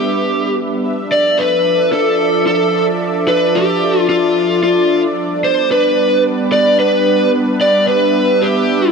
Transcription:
Already playing: G3 B3 D4 G4 B4 E5
0.85 F3 D4 A4 D5 E5
1.12 D5
1.39 B4
1.92 A4
2.47 A4
3.28 B4
3.55 G4
4.09 F4
4.63 F4
5.17 G3 B3 B4
5.44 C5
5.71 B4
6.52 D5
6.79 B4
7.34 E5
7.61 D5
7.88 B4
8.42 G4

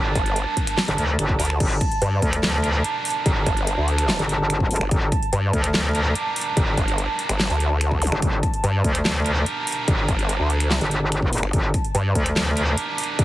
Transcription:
Already playing: G1 D4 G4 A#4 A5
0.15 G1, kick, closed hi-hat
0.26 closed hi-hat
0.36 closed hi-hat
0.57 kick, closed hi-hat
0.67 finger snap, closed hi-hat
0.78 snare, clap
0.88 G1, closed hi-hat
0.98 D2, closed hi-hat
1.19 G1, finger snap, closed hi-hat
1.29 kick
1.39 D2 D4 G4 A#4, open hi-hat
1.45 closed hi-hat
1.50 finger snap
1.60 G1, kick, closed hi-hat, crash
1.81 kick, closed hi-hat
1.92 closed hi-hat
2.02 G2, closed hi-hat
2.22 D2, kick, closed hi-hat
2.33 finger snap, closed hi-hat
2.43 snare, clap
2.64 D4 G4 A#4, closed hi-hat
2.84 closed hi-hat
3.05 open hi-hat
3.10 closed hi-hat
3.26 G1, kick, closed hi-hat
3.46 G1, kick, closed hi-hat
3.57 closed hi-hat
3.67 closed hi-hat
3.78 D2
3.88 closed hi-hat
3.98 finger snap, closed hi-hat
4.09 snare, clap
4.19 G1, closed hi-hat
4.29 closed hi-hat
4.50 finger snap, closed hi-hat
4.60 kick
4.71 open hi-hat
4.76 closed hi-hat
4.81 G1, finger snap
4.91 G1, kick, closed hi-hat
5.12 kick, closed hi-hat
5.23 closed hi-hat
5.33 G2, closed hi-hat
5.53 D2, kick, closed hi-hat
5.64 finger snap, closed hi-hat
5.74 snare, clap
5.95 D4 G4 A#4, closed hi-hat
6.15 closed hi-hat
6.36 open hi-hat
6.41 closed hi-hat
6.57 G1, kick, closed hi-hat
6.77 G1, kick, closed hi-hat
6.88 closed hi-hat
6.98 closed hi-hat
7.19 closed hi-hat
7.29 G1, finger snap, closed hi-hat
7.40 snare, clap
7.50 D2, closed hi-hat
7.60 closed hi-hat
7.81 finger snap, closed hi-hat
7.91 kick
8.02 open hi-hat, zap
8.07 closed hi-hat
8.12 G1, finger snap
8.22 G1, kick, closed hi-hat
8.43 kick, closed hi-hat
8.54 closed hi-hat
8.64 G2, closed hi-hat
8.84 D2, kick, closed hi-hat
8.95 finger snap, closed hi-hat
9.05 snare, clap
9.26 D4 G4 A#4, closed hi-hat
9.46 closed hi-hat
9.67 open hi-hat
9.72 closed hi-hat
9.88 G1, kick, closed hi-hat
10.08 G1, kick, closed hi-hat
10.19 closed hi-hat
10.29 closed hi-hat
10.40 D2
10.50 closed hi-hat
10.60 finger snap, closed hi-hat
10.71 snare, clap
10.81 G1, closed hi-hat
10.91 closed hi-hat
11.12 finger snap, closed hi-hat
11.22 kick
11.33 open hi-hat
11.38 closed hi-hat
11.43 G1, finger snap
11.53 G1, kick, closed hi-hat
11.74 kick, closed hi-hat
11.84 closed hi-hat
11.95 G2, closed hi-hat
12.15 D2, kick, closed hi-hat
12.26 finger snap, closed hi-hat
12.36 snare, clap
12.57 D4 G4 A#4, closed hi-hat
12.78 closed hi-hat
12.98 open hi-hat
13.04 closed hi-hat
13.19 G1, kick, closed hi-hat

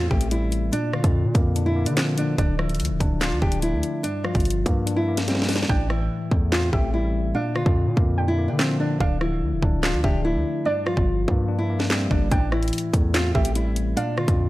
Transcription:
Already playing: A2 E3 A3 C4
0.11 A1 A3 G4, kick
0.21 closed hi-hat
0.31 G3 E4, closed hi-hat
0.52 closed hi-hat
0.72 A#2 D4, closed hi-hat
0.93 D3 F4, cross-stick
1.04 F2, kick, closed hi-hat
1.25 A#2
1.35 F2 A#3, kick, closed hi-hat
1.56 D4, closed hi-hat
1.66 E4
1.76 A#3
1.86 D3 D4, closed hi-hat
1.97 F3 C4, snare, clap, closed hi-hat
2.18 D4, closed hi-hat
2.38 D1 D3 D4, kick, closed hi-hat
2.59 F3 E4, cross-stick
2.69 closed hi-hat
2.75 closed hi-hat
2.80 D2, closed hi-hat
2.85 closed hi-hat
2.90 D1
3.00 D1 D4, kick, closed hi-hat
3.21 F4 D5, snare, clap, closed hi-hat
3.31 D2
3.42 D1 D4 G4, kick
3.52 closed hi-hat
3.62 A3 E4, closed hi-hat
3.73 D2
3.83 closed hi-hat
4.03 G2 D4, closed hi-hat
4.24 F3 F4, cross-stick
4.35 G1, kick, closed hi-hat
4.40 closed hi-hat
4.45 closed hi-hat
4.50 closed hi-hat
4.66 G2 A#3, kick, closed hi-hat
4.86 D4, closed hi-hat
4.96 E4
5.08 A#3
5.17 D4, snare, closed hi-hat
5.28 G3 C4, snare, closed hi-hat
5.35 snare
5.42 snare
5.49 D4, snare, open hi-hat
5.56 snare
5.63 snare
5.69 A1 A2 D4 G5, kick
5.90 E3 E4, cross-stick
6.31 E2 A3, kick
6.52 C4 F4, snare, clap
6.73 A1 A3 G4 E5, kick
6.94 G3 E4
7.34 A#2 D4 F5
7.55 D3 F4, cross-stick
7.66 F2, kick
7.87 A#2
7.97 F2 A#3, kick
8.18 D4 G5
8.28 E4
8.38 A#3
8.48 D3 D4
8.59 F3 C4, snare, clap
8.80 D4
9.00 D1 D3 D4 F5, kick
9.21 F3 E4, cross-stick
9.42 D2
9.52 D1
9.62 D1 D4, kick
9.83 F4 D5, snare, clap
9.94 D2
10.04 D1 D4 G4 E5, kick
10.24 A3 E4
10.35 D2
10.65 G2 D4 D5
10.86 F3 F4, cross-stick
10.97 G1, kick
11.28 G2 A#3, kick
11.48 D4
11.59 E4
11.70 A#3
11.79 D4, snare
11.90 G3 C4, snare, clap
12.11 G1 D4, kick
12.31 A1 A2 D4 G5, kick, closed hi-hat
12.52 E3 E4, cross-stick
12.63 closed hi-hat
12.68 closed hi-hat
12.73 closed hi-hat
12.78 closed hi-hat
12.93 E2 A3, kick, closed hi-hat
13.14 C4 F4, snare, clap, closed hi-hat
13.35 A1 A3 G4 E5, kick
13.45 closed hi-hat
13.55 G3 E4, closed hi-hat
13.76 closed hi-hat
13.97 A#2 D4 F5, closed hi-hat
14.17 D3 F4, cross-stick
14.28 F2, kick, closed hi-hat

